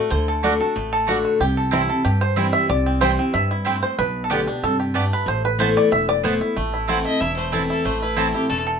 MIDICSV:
0, 0, Header, 1, 6, 480
1, 0, Start_track
1, 0, Tempo, 322754
1, 164, Time_signature, 4, 2, 24, 8
1, 13083, End_track
2, 0, Start_track
2, 0, Title_t, "Fiddle"
2, 0, Program_c, 0, 110
2, 10251, Note_on_c, 0, 78, 76
2, 10477, Note_off_c, 0, 78, 0
2, 10492, Note_on_c, 0, 75, 97
2, 10717, Note_on_c, 0, 76, 108
2, 10739, Note_off_c, 0, 75, 0
2, 10950, Note_off_c, 0, 76, 0
2, 10959, Note_on_c, 0, 72, 86
2, 11198, Note_on_c, 0, 71, 73
2, 11220, Note_off_c, 0, 72, 0
2, 11443, Note_off_c, 0, 71, 0
2, 11452, Note_on_c, 0, 69, 78
2, 11679, Note_on_c, 0, 72, 83
2, 11701, Note_off_c, 0, 69, 0
2, 11909, Note_off_c, 0, 72, 0
2, 11918, Note_on_c, 0, 71, 85
2, 12158, Note_on_c, 0, 69, 74
2, 12181, Note_off_c, 0, 71, 0
2, 12394, Note_off_c, 0, 69, 0
2, 12403, Note_on_c, 0, 67, 86
2, 12624, Note_off_c, 0, 67, 0
2, 12632, Note_on_c, 0, 69, 95
2, 12785, Note_off_c, 0, 69, 0
2, 13083, End_track
3, 0, Start_track
3, 0, Title_t, "Mandolin"
3, 0, Program_c, 1, 25
3, 638, Note_on_c, 1, 57, 93
3, 646, Note_on_c, 1, 66, 96
3, 650, Note_on_c, 1, 74, 99
3, 657, Note_on_c, 1, 78, 100
3, 777, Note_off_c, 1, 57, 0
3, 781, Note_off_c, 1, 66, 0
3, 783, Note_off_c, 1, 74, 0
3, 787, Note_off_c, 1, 78, 0
3, 1591, Note_on_c, 1, 57, 83
3, 1599, Note_on_c, 1, 66, 91
3, 1606, Note_on_c, 1, 74, 96
3, 1611, Note_on_c, 1, 78, 97
3, 1734, Note_off_c, 1, 57, 0
3, 1738, Note_off_c, 1, 66, 0
3, 1742, Note_off_c, 1, 74, 0
3, 1744, Note_off_c, 1, 78, 0
3, 2545, Note_on_c, 1, 60, 95
3, 2555, Note_on_c, 1, 64, 96
3, 2561, Note_on_c, 1, 72, 93
3, 2569, Note_on_c, 1, 79, 100
3, 2691, Note_off_c, 1, 60, 0
3, 2696, Note_off_c, 1, 64, 0
3, 2699, Note_off_c, 1, 72, 0
3, 2703, Note_off_c, 1, 79, 0
3, 3512, Note_on_c, 1, 60, 80
3, 3518, Note_on_c, 1, 64, 90
3, 3525, Note_on_c, 1, 72, 83
3, 3531, Note_on_c, 1, 79, 91
3, 3654, Note_off_c, 1, 60, 0
3, 3657, Note_off_c, 1, 64, 0
3, 3660, Note_off_c, 1, 72, 0
3, 3664, Note_off_c, 1, 79, 0
3, 4471, Note_on_c, 1, 60, 91
3, 4482, Note_on_c, 1, 64, 100
3, 4488, Note_on_c, 1, 72, 98
3, 4493, Note_on_c, 1, 79, 107
3, 4614, Note_off_c, 1, 60, 0
3, 4619, Note_off_c, 1, 64, 0
3, 4622, Note_off_c, 1, 72, 0
3, 4625, Note_off_c, 1, 79, 0
3, 5425, Note_on_c, 1, 60, 94
3, 5431, Note_on_c, 1, 64, 82
3, 5439, Note_on_c, 1, 72, 96
3, 5445, Note_on_c, 1, 79, 99
3, 5570, Note_off_c, 1, 60, 0
3, 5573, Note_off_c, 1, 64, 0
3, 5577, Note_off_c, 1, 72, 0
3, 5580, Note_off_c, 1, 79, 0
3, 6391, Note_on_c, 1, 59, 97
3, 6398, Note_on_c, 1, 67, 95
3, 6403, Note_on_c, 1, 74, 94
3, 6411, Note_on_c, 1, 81, 105
3, 6533, Note_off_c, 1, 59, 0
3, 6537, Note_off_c, 1, 67, 0
3, 6539, Note_off_c, 1, 74, 0
3, 6543, Note_off_c, 1, 81, 0
3, 7347, Note_on_c, 1, 59, 93
3, 7356, Note_on_c, 1, 67, 79
3, 7361, Note_on_c, 1, 74, 87
3, 7366, Note_on_c, 1, 81, 97
3, 7491, Note_off_c, 1, 59, 0
3, 7495, Note_off_c, 1, 67, 0
3, 7498, Note_off_c, 1, 74, 0
3, 7500, Note_off_c, 1, 81, 0
3, 8311, Note_on_c, 1, 59, 97
3, 8319, Note_on_c, 1, 64, 99
3, 8325, Note_on_c, 1, 72, 102
3, 8331, Note_on_c, 1, 81, 98
3, 8453, Note_off_c, 1, 59, 0
3, 8457, Note_off_c, 1, 64, 0
3, 8459, Note_off_c, 1, 72, 0
3, 8462, Note_off_c, 1, 81, 0
3, 9272, Note_on_c, 1, 59, 95
3, 9279, Note_on_c, 1, 64, 81
3, 9287, Note_on_c, 1, 72, 106
3, 9293, Note_on_c, 1, 81, 91
3, 9413, Note_off_c, 1, 59, 0
3, 9417, Note_off_c, 1, 64, 0
3, 9420, Note_off_c, 1, 72, 0
3, 9423, Note_off_c, 1, 81, 0
3, 10227, Note_on_c, 1, 60, 86
3, 10238, Note_on_c, 1, 64, 98
3, 10244, Note_on_c, 1, 72, 98
3, 10248, Note_on_c, 1, 81, 95
3, 10371, Note_off_c, 1, 60, 0
3, 10376, Note_off_c, 1, 64, 0
3, 10379, Note_off_c, 1, 72, 0
3, 10381, Note_off_c, 1, 81, 0
3, 11184, Note_on_c, 1, 60, 88
3, 11187, Note_on_c, 1, 64, 80
3, 11195, Note_on_c, 1, 72, 86
3, 11201, Note_on_c, 1, 81, 88
3, 11330, Note_off_c, 1, 60, 0
3, 11332, Note_off_c, 1, 64, 0
3, 11336, Note_off_c, 1, 72, 0
3, 11339, Note_off_c, 1, 81, 0
3, 12142, Note_on_c, 1, 60, 95
3, 12148, Note_on_c, 1, 64, 98
3, 12153, Note_on_c, 1, 72, 97
3, 12165, Note_on_c, 1, 81, 95
3, 12290, Note_off_c, 1, 60, 0
3, 12293, Note_off_c, 1, 64, 0
3, 12296, Note_off_c, 1, 72, 0
3, 12301, Note_off_c, 1, 81, 0
3, 13083, End_track
4, 0, Start_track
4, 0, Title_t, "Five-string banjo"
4, 0, Program_c, 2, 105
4, 0, Note_on_c, 2, 57, 65
4, 0, Note_on_c, 2, 74, 98
4, 158, Note_off_c, 2, 74, 0
4, 164, Note_on_c, 2, 72, 81
4, 394, Note_off_c, 2, 72, 0
4, 420, Note_on_c, 2, 69, 57
4, 600, Note_off_c, 2, 57, 0
4, 657, Note_on_c, 2, 66, 67
4, 883, Note_off_c, 2, 69, 0
4, 901, Note_on_c, 2, 69, 56
4, 1133, Note_on_c, 2, 57, 58
4, 1328, Note_off_c, 2, 66, 0
4, 1361, Note_off_c, 2, 69, 0
4, 1378, Note_on_c, 2, 69, 87
4, 1614, Note_off_c, 2, 69, 0
4, 1615, Note_on_c, 2, 66, 89
4, 1806, Note_off_c, 2, 57, 0
4, 1838, Note_off_c, 2, 66, 0
4, 1855, Note_on_c, 2, 66, 61
4, 2085, Note_off_c, 2, 66, 0
4, 2092, Note_on_c, 2, 67, 91
4, 2339, Note_on_c, 2, 69, 53
4, 2571, Note_off_c, 2, 67, 0
4, 2577, Note_on_c, 2, 64, 95
4, 2801, Note_off_c, 2, 69, 0
4, 2819, Note_on_c, 2, 69, 55
4, 3038, Note_off_c, 2, 64, 0
4, 3044, Note_on_c, 2, 67, 89
4, 3284, Note_off_c, 2, 67, 0
4, 3290, Note_on_c, 2, 72, 100
4, 3480, Note_off_c, 2, 69, 0
4, 3532, Note_on_c, 2, 60, 66
4, 3737, Note_off_c, 2, 72, 0
4, 3762, Note_on_c, 2, 76, 108
4, 3982, Note_off_c, 2, 76, 0
4, 4010, Note_on_c, 2, 74, 113
4, 4206, Note_off_c, 2, 60, 0
4, 4258, Note_on_c, 2, 60, 58
4, 4473, Note_off_c, 2, 74, 0
4, 4479, Note_on_c, 2, 72, 100
4, 4725, Note_off_c, 2, 60, 0
4, 4743, Note_on_c, 2, 60, 69
4, 4957, Note_off_c, 2, 72, 0
4, 4963, Note_on_c, 2, 76, 102
4, 5193, Note_off_c, 2, 76, 0
4, 5219, Note_on_c, 2, 64, 68
4, 5402, Note_off_c, 2, 60, 0
4, 5449, Note_on_c, 2, 60, 75
4, 5691, Note_on_c, 2, 72, 96
4, 5880, Note_off_c, 2, 64, 0
4, 5906, Note_off_c, 2, 72, 0
4, 5926, Note_off_c, 2, 60, 0
4, 5928, Note_on_c, 2, 71, 94
4, 6279, Note_off_c, 2, 71, 0
4, 6306, Note_on_c, 2, 69, 60
4, 6404, Note_off_c, 2, 69, 0
4, 6406, Note_on_c, 2, 67, 97
4, 6648, Note_off_c, 2, 67, 0
4, 6654, Note_on_c, 2, 62, 59
4, 6895, Note_on_c, 2, 69, 95
4, 7127, Note_off_c, 2, 69, 0
4, 7132, Note_on_c, 2, 67, 64
4, 7317, Note_off_c, 2, 62, 0
4, 7363, Note_on_c, 2, 57, 67
4, 7633, Note_on_c, 2, 71, 102
4, 7796, Note_off_c, 2, 67, 0
4, 7838, Note_off_c, 2, 71, 0
4, 7856, Note_on_c, 2, 72, 108
4, 8098, Note_off_c, 2, 72, 0
4, 8104, Note_on_c, 2, 71, 95
4, 8149, Note_off_c, 2, 57, 0
4, 8313, Note_off_c, 2, 71, 0
4, 8329, Note_on_c, 2, 72, 111
4, 8576, Note_off_c, 2, 72, 0
4, 8582, Note_on_c, 2, 74, 108
4, 8800, Note_off_c, 2, 74, 0
4, 8806, Note_on_c, 2, 76, 111
4, 9034, Note_off_c, 2, 76, 0
4, 9054, Note_on_c, 2, 74, 108
4, 9280, Note_off_c, 2, 74, 0
4, 9286, Note_on_c, 2, 72, 94
4, 9514, Note_off_c, 2, 72, 0
4, 9535, Note_on_c, 2, 64, 59
4, 9763, Note_on_c, 2, 57, 73
4, 9764, Note_off_c, 2, 64, 0
4, 10018, Note_on_c, 2, 64, 58
4, 10245, Note_off_c, 2, 57, 0
4, 10251, Note_on_c, 2, 57, 61
4, 10470, Note_off_c, 2, 64, 0
4, 10487, Note_on_c, 2, 64, 56
4, 10702, Note_off_c, 2, 64, 0
4, 10720, Note_on_c, 2, 64, 62
4, 10961, Note_off_c, 2, 57, 0
4, 10966, Note_on_c, 2, 57, 59
4, 11183, Note_off_c, 2, 64, 0
4, 11201, Note_on_c, 2, 64, 53
4, 11434, Note_off_c, 2, 64, 0
4, 11452, Note_on_c, 2, 64, 59
4, 11676, Note_off_c, 2, 57, 0
4, 11682, Note_on_c, 2, 57, 78
4, 11916, Note_off_c, 2, 64, 0
4, 11934, Note_on_c, 2, 64, 58
4, 12165, Note_on_c, 2, 69, 66
4, 12392, Note_off_c, 2, 64, 0
4, 12409, Note_on_c, 2, 64, 54
4, 12630, Note_off_c, 2, 57, 0
4, 12636, Note_on_c, 2, 57, 62
4, 12883, Note_off_c, 2, 69, 0
4, 12889, Note_on_c, 2, 69, 65
4, 13078, Note_off_c, 2, 64, 0
4, 13083, Note_off_c, 2, 57, 0
4, 13083, Note_off_c, 2, 69, 0
4, 13083, End_track
5, 0, Start_track
5, 0, Title_t, "Steel-string acoustic guitar"
5, 0, Program_c, 3, 25
5, 0, Note_on_c, 3, 62, 49
5, 0, Note_on_c, 3, 66, 65
5, 153, Note_off_c, 3, 66, 0
5, 154, Note_on_c, 3, 50, 98
5, 164, Note_off_c, 3, 62, 0
5, 631, Note_off_c, 3, 50, 0
5, 649, Note_on_c, 3, 50, 76
5, 653, Note_on_c, 3, 57, 96
5, 661, Note_on_c, 3, 62, 91
5, 670, Note_on_c, 3, 66, 96
5, 874, Note_off_c, 3, 66, 0
5, 884, Note_off_c, 3, 50, 0
5, 886, Note_off_c, 3, 57, 0
5, 890, Note_off_c, 3, 62, 0
5, 892, Note_on_c, 3, 66, 63
5, 907, Note_on_c, 3, 62, 46
5, 1114, Note_off_c, 3, 66, 0
5, 1122, Note_off_c, 3, 62, 0
5, 1124, Note_on_c, 3, 45, 99
5, 1600, Note_on_c, 3, 50, 84
5, 1613, Note_on_c, 3, 57, 95
5, 1613, Note_on_c, 3, 62, 88
5, 1621, Note_on_c, 3, 66, 92
5, 2037, Note_off_c, 3, 45, 0
5, 2058, Note_off_c, 3, 50, 0
5, 2065, Note_off_c, 3, 57, 0
5, 2065, Note_off_c, 3, 62, 0
5, 2069, Note_off_c, 3, 66, 0
5, 2092, Note_on_c, 3, 48, 89
5, 2560, Note_on_c, 3, 52, 89
5, 2565, Note_on_c, 3, 55, 83
5, 2573, Note_on_c, 3, 60, 91
5, 2578, Note_on_c, 3, 64, 91
5, 2793, Note_off_c, 3, 64, 0
5, 2799, Note_off_c, 3, 52, 0
5, 2802, Note_off_c, 3, 55, 0
5, 2806, Note_off_c, 3, 60, 0
5, 2811, Note_on_c, 3, 64, 61
5, 2824, Note_on_c, 3, 60, 48
5, 3001, Note_off_c, 3, 48, 0
5, 3033, Note_off_c, 3, 64, 0
5, 3040, Note_off_c, 3, 60, 0
5, 3044, Note_on_c, 3, 43, 95
5, 3513, Note_on_c, 3, 52, 94
5, 3521, Note_on_c, 3, 55, 92
5, 3532, Note_on_c, 3, 60, 86
5, 3545, Note_on_c, 3, 64, 95
5, 3957, Note_off_c, 3, 43, 0
5, 3975, Note_off_c, 3, 52, 0
5, 3979, Note_off_c, 3, 55, 0
5, 3984, Note_off_c, 3, 60, 0
5, 3991, Note_off_c, 3, 64, 0
5, 4004, Note_on_c, 3, 48, 94
5, 4480, Note_on_c, 3, 52, 83
5, 4484, Note_on_c, 3, 55, 89
5, 4488, Note_on_c, 3, 60, 89
5, 4497, Note_on_c, 3, 64, 93
5, 4719, Note_off_c, 3, 52, 0
5, 4721, Note_off_c, 3, 55, 0
5, 4723, Note_off_c, 3, 60, 0
5, 4728, Note_off_c, 3, 64, 0
5, 4744, Note_on_c, 3, 64, 63
5, 4760, Note_on_c, 3, 60, 50
5, 4917, Note_off_c, 3, 48, 0
5, 4960, Note_off_c, 3, 64, 0
5, 4968, Note_off_c, 3, 60, 0
5, 4968, Note_on_c, 3, 43, 102
5, 5422, Note_off_c, 3, 43, 0
5, 5455, Note_on_c, 3, 45, 95
5, 5905, Note_off_c, 3, 45, 0
5, 5927, Note_on_c, 3, 47, 99
5, 6410, Note_on_c, 3, 50, 83
5, 6421, Note_on_c, 3, 57, 89
5, 6424, Note_on_c, 3, 59, 93
5, 6433, Note_on_c, 3, 67, 91
5, 6640, Note_off_c, 3, 67, 0
5, 6644, Note_off_c, 3, 50, 0
5, 6649, Note_off_c, 3, 57, 0
5, 6650, Note_off_c, 3, 59, 0
5, 6658, Note_on_c, 3, 67, 62
5, 6680, Note_on_c, 3, 59, 51
5, 6838, Note_off_c, 3, 47, 0
5, 6877, Note_off_c, 3, 67, 0
5, 6887, Note_off_c, 3, 59, 0
5, 6901, Note_on_c, 3, 48, 91
5, 7348, Note_off_c, 3, 48, 0
5, 7364, Note_on_c, 3, 43, 96
5, 7816, Note_off_c, 3, 43, 0
5, 7822, Note_on_c, 3, 45, 104
5, 8305, Note_on_c, 3, 52, 94
5, 8313, Note_on_c, 3, 57, 94
5, 8323, Note_on_c, 3, 59, 97
5, 8327, Note_on_c, 3, 64, 94
5, 8744, Note_off_c, 3, 45, 0
5, 8769, Note_off_c, 3, 52, 0
5, 8773, Note_off_c, 3, 57, 0
5, 8778, Note_off_c, 3, 59, 0
5, 8780, Note_off_c, 3, 64, 0
5, 8799, Note_on_c, 3, 52, 97
5, 9255, Note_off_c, 3, 52, 0
5, 9273, Note_on_c, 3, 52, 80
5, 9275, Note_on_c, 3, 57, 87
5, 9292, Note_on_c, 3, 59, 94
5, 9293, Note_on_c, 3, 64, 106
5, 9508, Note_off_c, 3, 64, 0
5, 9514, Note_off_c, 3, 52, 0
5, 9516, Note_off_c, 3, 57, 0
5, 9524, Note_off_c, 3, 59, 0
5, 9526, Note_on_c, 3, 64, 58
5, 9548, Note_on_c, 3, 59, 51
5, 9750, Note_off_c, 3, 64, 0
5, 9761, Note_off_c, 3, 59, 0
5, 9771, Note_on_c, 3, 45, 86
5, 10236, Note_on_c, 3, 52, 74
5, 10244, Note_on_c, 3, 57, 88
5, 10248, Note_on_c, 3, 60, 97
5, 10258, Note_on_c, 3, 64, 97
5, 10477, Note_off_c, 3, 52, 0
5, 10478, Note_off_c, 3, 64, 0
5, 10481, Note_off_c, 3, 57, 0
5, 10483, Note_off_c, 3, 60, 0
5, 10496, Note_on_c, 3, 64, 61
5, 10515, Note_on_c, 3, 60, 48
5, 10680, Note_off_c, 3, 45, 0
5, 10716, Note_off_c, 3, 64, 0
5, 10725, Note_off_c, 3, 60, 0
5, 10730, Note_on_c, 3, 40, 95
5, 11188, Note_on_c, 3, 52, 86
5, 11194, Note_on_c, 3, 57, 85
5, 11205, Note_on_c, 3, 60, 94
5, 11205, Note_on_c, 3, 64, 92
5, 11641, Note_off_c, 3, 40, 0
5, 11653, Note_off_c, 3, 52, 0
5, 11656, Note_off_c, 3, 57, 0
5, 11661, Note_off_c, 3, 60, 0
5, 11661, Note_off_c, 3, 64, 0
5, 11675, Note_on_c, 3, 45, 90
5, 12142, Note_on_c, 3, 52, 91
5, 12152, Note_on_c, 3, 57, 83
5, 12160, Note_on_c, 3, 60, 86
5, 12171, Note_on_c, 3, 64, 91
5, 12383, Note_off_c, 3, 64, 0
5, 12392, Note_off_c, 3, 52, 0
5, 12396, Note_off_c, 3, 57, 0
5, 12400, Note_off_c, 3, 60, 0
5, 12401, Note_on_c, 3, 64, 53
5, 12420, Note_on_c, 3, 60, 43
5, 12595, Note_off_c, 3, 45, 0
5, 12630, Note_off_c, 3, 64, 0
5, 12635, Note_on_c, 3, 40, 96
5, 12639, Note_off_c, 3, 60, 0
5, 13083, Note_off_c, 3, 40, 0
5, 13083, End_track
6, 0, Start_track
6, 0, Title_t, "Upright bass"
6, 0, Program_c, 4, 32
6, 170, Note_on_c, 4, 38, 102
6, 873, Note_off_c, 4, 38, 0
6, 1137, Note_on_c, 4, 33, 87
6, 1837, Note_off_c, 4, 33, 0
6, 2083, Note_on_c, 4, 36, 100
6, 2789, Note_off_c, 4, 36, 0
6, 3051, Note_on_c, 4, 43, 84
6, 3753, Note_off_c, 4, 43, 0
6, 4011, Note_on_c, 4, 36, 98
6, 4713, Note_off_c, 4, 36, 0
6, 4969, Note_on_c, 4, 43, 82
6, 5672, Note_off_c, 4, 43, 0
6, 5929, Note_on_c, 4, 35, 101
6, 6631, Note_off_c, 4, 35, 0
6, 6889, Note_on_c, 4, 43, 86
6, 7591, Note_off_c, 4, 43, 0
6, 7839, Note_on_c, 4, 33, 95
6, 8544, Note_off_c, 4, 33, 0
6, 8804, Note_on_c, 4, 28, 87
6, 9508, Note_off_c, 4, 28, 0
6, 9770, Note_on_c, 4, 33, 98
6, 10472, Note_off_c, 4, 33, 0
6, 10723, Note_on_c, 4, 28, 83
6, 11429, Note_off_c, 4, 28, 0
6, 11679, Note_on_c, 4, 33, 90
6, 12387, Note_off_c, 4, 33, 0
6, 12631, Note_on_c, 4, 28, 81
6, 13083, Note_off_c, 4, 28, 0
6, 13083, End_track
0, 0, End_of_file